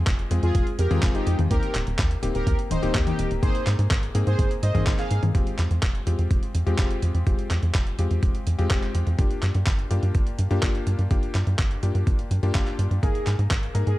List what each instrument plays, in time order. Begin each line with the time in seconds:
Already playing: electric grand piano G#3 C4 F4 G#4
0.07 analog synth bass F1, kick, clap, closed hi-hat
0.19 closed hi-hat
0.31 analog synth bass F2, electric grand piano G#3 C4 F4 G#4, closed hi-hat
0.43 analog synth bass F2, analog polysynth F4 G#4, closed hi-hat
0.55 analog synth bass F1, kick, closed hi-hat
0.67 closed hi-hat
0.79 analog synth bass F2, analog polysynth G4 A#4, closed hi-hat
0.91 analog synth bass F2, electric grand piano G#3 C4 F4 G#4, closed hi-hat, high tom
1.03 analog synth bass F1, electric grand piano G#3 C4 F4 G#4, kick, clap, closed hi-hat
1.15 analog polysynth D#4 G4, closed hi-hat
1.27 analog synth bass F2, closed hi-hat
1.39 analog synth bass F2, closed hi-hat, high tom
1.51 analog synth bass D#2, electric grand piano A#3 C4 D#4 G4, analog polysynth G4 A#4, kick, closed hi-hat
1.63 closed hi-hat
1.75 analog synth bass D#1, clap, closed hi-hat
1.87 analog synth bass D#1, closed hi-hat
1.99 analog synth bass D#2, kick, clap, closed hi-hat
2.11 closed hi-hat
2.23 analog synth bass D#1, electric grand piano A#3 C4 D#4 G4, closed hi-hat
2.35 analog synth bass D#1, analog polysynth G4 A#4, closed hi-hat
2.47 analog synth bass D#2, kick, closed hi-hat
2.59 closed hi-hat
2.71 analog synth bass D#1, analog polysynth D#4 C5, closed hi-hat, high tom
2.82 analog synth bass D#1, electric grand piano A#3 C4 D#4 G4, closed hi-hat
2.94 analog synth bass D#2, electric grand piano A#3 C4 D#4 G4, kick, clap, closed hi-hat
3.07 analog polysynth D#4 G4, closed hi-hat, high tom
3.19 analog synth bass D#1, closed hi-hat
3.31 analog synth bass D#1, closed hi-hat
3.42 analog synth bass G#1, electric grand piano A#3 C4 D#4 G#4, analog polysynth G#4 C5, kick, closed hi-hat
3.55 closed hi-hat
3.67 analog synth bass G#2, clap, closed hi-hat
3.79 analog synth bass G#2, closed hi-hat
3.91 analog synth bass G#1, kick, clap, closed hi-hat
4.03 closed hi-hat
4.15 analog synth bass G#2, electric grand piano A#3 C4 D#4 G#4, closed hi-hat
4.27 analog synth bass G#2, analog polysynth G#4 C5, closed hi-hat
4.39 analog synth bass G#1, kick, closed hi-hat
4.51 closed hi-hat
4.63 analog synth bass G#2, analog polysynth C5 D#5, closed hi-hat
4.75 analog synth bass G#2, electric grand piano A#3 C4 D#4 G#4, kick, closed hi-hat, high tom
4.87 analog synth bass G#1, kick, clap, closed hi-hat
4.99 analog polysynth G#4 F5, clap, closed hi-hat
5.11 analog synth bass G#2, closed hi-hat
5.23 analog synth bass G#2, closed hi-hat, high tom
5.35 analog synth bass F1, electric grand piano G#3 C4 F4 G4, kick, closed hi-hat
5.47 closed hi-hat
5.59 analog synth bass F2, clap, closed hi-hat
5.71 analog synth bass F2, closed hi-hat
5.83 analog synth bass F1, kick, clap, closed hi-hat
5.95 closed hi-hat
6.07 analog synth bass F2, electric grand piano G#3 C4 F4 G4, closed hi-hat
6.19 analog synth bass F2, closed hi-hat
6.31 analog synth bass F1, kick, closed hi-hat
6.43 closed hi-hat
6.55 analog synth bass F2, closed hi-hat
6.66 analog synth bass F2, electric grand piano G#3 C4 F4 G4, closed hi-hat
6.79 analog synth bass F1, electric grand piano G#3 C4 F4 G4, kick, clap, closed hi-hat
6.91 closed hi-hat
7.02 analog synth bass F2, closed hi-hat
7.14 analog synth bass F2, closed hi-hat
7.27 analog synth bass F1, electric grand piano G#3 C4 F4 G4, kick, closed hi-hat
7.39 closed hi-hat
7.51 analog synth bass F2, clap, closed hi-hat
7.63 analog synth bass F2, closed hi-hat
7.75 analog synth bass F1, kick, clap, closed hi-hat
7.87 closed hi-hat
7.99 analog synth bass F2, electric grand piano G#3 C4 F4 G4, closed hi-hat
8.11 analog synth bass F2, closed hi-hat
8.23 analog synth bass F1, kick, closed hi-hat
8.35 closed hi-hat
8.47 analog synth bass F2, closed hi-hat
8.58 analog synth bass F2, electric grand piano G#3 C4 F4 G4, closed hi-hat
8.70 analog synth bass F1, electric grand piano G#3 C4 F4 G4, kick, clap, closed hi-hat
8.83 clap, closed hi-hat
8.95 analog synth bass F2, closed hi-hat
9.07 analog synth bass F2, closed hi-hat
9.18 analog synth bass G1, electric grand piano A#3 D4 F4 G4, kick, closed hi-hat
9.31 closed hi-hat
9.43 analog synth bass G2, clap, closed hi-hat
9.55 analog synth bass G2, closed hi-hat
9.67 analog synth bass G1, kick, clap, closed hi-hat
9.79 closed hi-hat
9.91 analog synth bass G2, electric grand piano A#3 D4 F4 G4, closed hi-hat
10.03 analog synth bass G2, closed hi-hat
10.15 analog synth bass G1, kick, closed hi-hat
10.27 closed hi-hat
10.39 analog synth bass G2, closed hi-hat
10.51 analog synth bass G2, electric grand piano A#3 D4 F4 G4, closed hi-hat
10.63 analog synth bass G1, electric grand piano A#3 D4 F4 G4, kick, clap, closed hi-hat
10.75 closed hi-hat
10.87 analog synth bass G2, closed hi-hat
10.99 analog synth bass G2, closed hi-hat
11.11 analog synth bass G1, electric grand piano A#3 D4 F4 G4, kick, closed hi-hat
11.23 closed hi-hat
11.35 analog synth bass G2, clap, closed hi-hat
11.47 analog synth bass G2, closed hi-hat
11.59 analog synth bass G1, kick, clap, closed hi-hat
11.71 closed hi-hat
11.83 analog synth bass G2, electric grand piano A#3 D4 F4 G4, closed hi-hat
11.95 analog synth bass G2, closed hi-hat
12.07 analog synth bass G1, kick, closed hi-hat
12.19 closed hi-hat
12.31 analog synth bass G2, closed hi-hat
12.43 analog synth bass G2, electric grand piano A#3 D4 F4 G4, closed hi-hat
12.55 analog synth bass G1, electric grand piano A#3 D4 F4 G4, kick, clap, closed hi-hat
12.67 clap, closed hi-hat
12.79 analog synth bass G2, closed hi-hat
12.91 analog synth bass G2, closed hi-hat
13.03 analog synth bass G#1, electric grand piano A#3 D#4 G#4 A#4, analog polysynth G#4, kick, closed hi-hat
13.15 closed hi-hat
13.27 analog synth bass G#2, clap, closed hi-hat
13.39 analog synth bass G#2, closed hi-hat
13.51 analog synth bass G#1, kick, clap, closed hi-hat
13.63 closed hi-hat
13.75 analog synth bass G#2, electric grand piano A#3 D#4 G#4 A#4, closed hi-hat
13.87 analog synth bass G#2, analog polysynth G#4, closed hi-hat